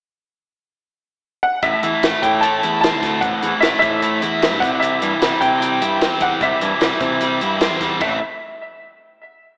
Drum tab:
CC |--------|--------|--------|--------|
HH |--------|xxxxxxxx|xxxxxxxx|xxxxxxxx|
SD |--------|--o---oo|--o---o-|--o---o-|
BD |--------|o--o---o|o--o---o|---o---o|

CC |--------|x-------|
HH |xxxxxxxx|--------|
SD |--o---oo|--------|
BD |o--o---o|o-------|